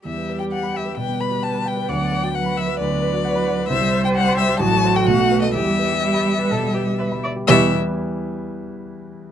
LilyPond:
<<
  \new Staff \with { instrumentName = "Violin" } { \time 4/4 \key e \minor \tempo 4 = 129 e''8. g''16 fis''8 e''8 g''8 b''8 a''8 g''8 | fis''8. g''16 fis''8 e''8 d''2 | e''8. g''16 fis''8 e''8 a''8. g''16 fis''8. dis''16 | e''2.~ e''8 r8 |
e''8 r2. r8 | }
  \new Staff \with { instrumentName = "Grand piano" } { \time 4/4 \key e \minor e,16 b16 b'16 g'16 g''16 b''16 g''16 b'16 b,16 b16 b'16 g'16 g''16 b''16 g''16 b'16 | d,16 b16 b'16 fis'16 fis''16 b''16 fis''16 b'16 d,16 b16 b'16 fis'16 fis''16 b''16 fis''16 b'16 | c,16 g16 c''16 g'16 g''16 c'''16 g''16 g'16 a,,16 a16 c''16 a'16 b,,16 a16 b'16 a'16 | e,16 g16 b'16 g'16 e''16 b''16 e''16 g'16 b,16 g16 b'16 g'16 e''16 b''16 e''16 g'16 |
<e, e g e' b' e''>8 r2. r8 | }
  \new Staff \with { instrumentName = "Viola" } { \time 4/4 \key e \minor g'2 b'2 | d''4 b'2 b'4 | c''2 fis'2 | g'4 g'8. b'16 a'8 g'8 b'8 d''8 |
g'8 r2. r8 | }
  \new Staff \with { instrumentName = "Cello" } { \clef bass \time 4/4 \key e \minor g2 g2 | fis4 fis4 fis2 | g2 fis4 a4 | g2.~ g8 r8 |
b,8 r2. r8 | }
>>